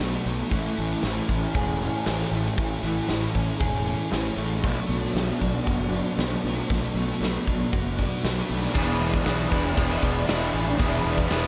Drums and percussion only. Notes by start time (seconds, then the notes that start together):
0.26 open hi-hat
0.51 kick, open hi-hat
0.77 open hi-hat
1.03 snare, open hi-hat
1.29 kick, open hi-hat
1.55 kick, open hi-hat
1.82 open hi-hat
2.06 snare, open hi-hat
2.32 open hi-hat
2.45 snare
2.58 kick, open hi-hat
2.84 open hi-hat
3.09 snare, open hi-hat
3.35 kick, open hi-hat
3.60 kick, open hi-hat
3.86 open hi-hat
4.12 snare, open hi-hat
4.38 open hi-hat
4.64 kick, open hi-hat
4.90 open hi-hat
5.04 snare
5.16 snare, open hi-hat
5.41 kick, open hi-hat
5.67 kick, open hi-hat
5.94 open hi-hat
6.19 snare, open hi-hat
6.45 open hi-hat
6.70 kick, open hi-hat
6.96 open hi-hat
7.10 snare
7.23 snare, open hi-hat
7.47 kick, open hi-hat
7.73 kick, open hi-hat
7.99 kick, open hi-hat
8.24 snare, open hi-hat
8.49 open hi-hat
8.63 snare
8.75 kick, crash
9.01 open hi-hat
9.14 kick
9.26 snare, open hi-hat, tambourine
9.52 kick, open hi-hat
9.77 kick, open hi-hat
9.91 snare
10.03 kick, open hi-hat
10.27 snare, open hi-hat, tambourine
10.54 open hi-hat
10.80 kick, open hi-hat
11.06 open hi-hat
11.18 kick
11.29 snare, open hi-hat, tambourine